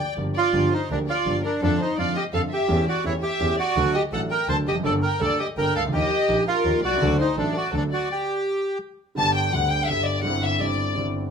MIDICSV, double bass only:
0, 0, Header, 1, 2, 480
1, 0, Start_track
1, 0, Key_signature, -2, "minor"
1, 0, Tempo, 359497
1, 720, Time_signature, 3, 2, 24, 8
1, 15093, End_track
2, 0, Start_track
2, 0, Title_t, "Double bass"
2, 0, Program_c, 0, 43
2, 237, Note_on_c, 0, 31, 44
2, 440, Note_off_c, 0, 31, 0
2, 714, Note_on_c, 0, 31, 62
2, 918, Note_off_c, 0, 31, 0
2, 1196, Note_on_c, 0, 38, 40
2, 1400, Note_off_c, 0, 38, 0
2, 1680, Note_on_c, 0, 31, 47
2, 1881, Note_off_c, 0, 31, 0
2, 2156, Note_on_c, 0, 41, 64
2, 2359, Note_off_c, 0, 41, 0
2, 2634, Note_on_c, 0, 41, 42
2, 2837, Note_off_c, 0, 41, 0
2, 3112, Note_on_c, 0, 41, 48
2, 3315, Note_off_c, 0, 41, 0
2, 3587, Note_on_c, 0, 40, 72
2, 3792, Note_off_c, 0, 40, 0
2, 4064, Note_on_c, 0, 40, 41
2, 4270, Note_off_c, 0, 40, 0
2, 4544, Note_on_c, 0, 40, 52
2, 4749, Note_off_c, 0, 40, 0
2, 5021, Note_on_c, 0, 38, 67
2, 5228, Note_off_c, 0, 38, 0
2, 5501, Note_on_c, 0, 33, 42
2, 5708, Note_off_c, 0, 33, 0
2, 5987, Note_on_c, 0, 38, 44
2, 6193, Note_off_c, 0, 38, 0
2, 6230, Note_on_c, 0, 29, 33
2, 6462, Note_off_c, 0, 29, 0
2, 6470, Note_on_c, 0, 31, 66
2, 6675, Note_off_c, 0, 31, 0
2, 6951, Note_on_c, 0, 38, 39
2, 7156, Note_off_c, 0, 38, 0
2, 7438, Note_on_c, 0, 31, 49
2, 7639, Note_off_c, 0, 31, 0
2, 7669, Note_on_c, 0, 37, 34
2, 7907, Note_off_c, 0, 37, 0
2, 7915, Note_on_c, 0, 39, 63
2, 8118, Note_off_c, 0, 39, 0
2, 8401, Note_on_c, 0, 34, 43
2, 8601, Note_off_c, 0, 34, 0
2, 8879, Note_on_c, 0, 39, 53
2, 9080, Note_off_c, 0, 39, 0
2, 9116, Note_on_c, 0, 36, 38
2, 9352, Note_off_c, 0, 36, 0
2, 9360, Note_on_c, 0, 38, 73
2, 9560, Note_off_c, 0, 38, 0
2, 9837, Note_on_c, 0, 33, 47
2, 10038, Note_off_c, 0, 33, 0
2, 10321, Note_on_c, 0, 38, 50
2, 10521, Note_off_c, 0, 38, 0
2, 12246, Note_on_c, 0, 31, 60
2, 12701, Note_off_c, 0, 31, 0
2, 12729, Note_on_c, 0, 38, 42
2, 13183, Note_off_c, 0, 38, 0
2, 13211, Note_on_c, 0, 31, 47
2, 13664, Note_off_c, 0, 31, 0
2, 13685, Note_on_c, 0, 31, 62
2, 14139, Note_off_c, 0, 31, 0
2, 14172, Note_on_c, 0, 31, 42
2, 14621, Note_off_c, 0, 31, 0
2, 14639, Note_on_c, 0, 31, 49
2, 15093, Note_off_c, 0, 31, 0
2, 15093, End_track
0, 0, End_of_file